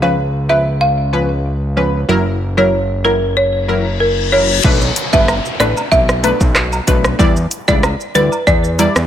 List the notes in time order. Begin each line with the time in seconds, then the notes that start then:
Already playing: C#2
0.02 F3 C#4 B4 F5
0.49 F3 C#4 B4 E5
0.81 F5
1.13 F3 C#4 B4
1.77 F3 C#4 B4
2.09 F#1 F#3 E4 A#4
2.57 F#3 E4 A#4 C#5
3.04 F#3 E4 A#4
3.37 C#5, reverse cymbal
3.68 F#3 E4 A#4
4.00 A#4
4.32 F#3 E4 A#4 C#5
4.64 B1 A3 D4 B4, kick, crash, downlifter, shaker
4.81 shaker
4.96 closed hi-hat, cabasa, shaker
5.13 G1 A3 D4 B4 E5, kick, shaker
5.28 cross-stick, high woodblock, shaker
5.45 shaker
5.60 A1 A3 D4 B4 D5, cross-stick, closed hi-hat, cabasa, shaker
5.77 high woodblock, shaker
5.92 B1 E5, kick, shaker
6.09 cross-stick, shaker
6.23 A3 D4 B4, closed hi-hat, cabasa, high woodblock, shaker
6.41 B1, kick, shaker
6.55 cross-stick, clap, shaker
6.72 high woodblock, shaker
6.87 B1 A3 D4 B4, kick, closed hi-hat, cabasa, shaker
7.04 cross-stick, shaker
7.19 E2 G3 E4 D5, kick, shaker
7.36 shaker
7.51 closed hi-hat, cabasa, shaker
7.68 C#2 G3 E4 D5, kick, shaker
7.83 cross-stick, high woodblock, shaker
8.00 shaker
8.15 D2 G3 E4 B4 D5, closed hi-hat, cabasa, shaker
8.32 high woodblock, shaker
8.47 E2 D5, kick, shaker
8.64 shaker
8.79 G3 E4 D5, closed hi-hat, cabasa, high woodblock, shaker
8.96 E2, cross-stick, shaker